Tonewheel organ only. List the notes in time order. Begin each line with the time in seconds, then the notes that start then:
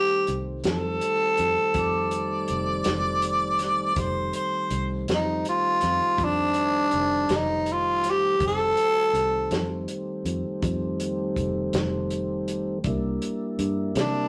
Already playing: D#3 G3 A3 C4
3.95 D#3 G3 A3 C4
8.37 D#3 G3 A3 C4
12.86 G3 A#3 D4 E4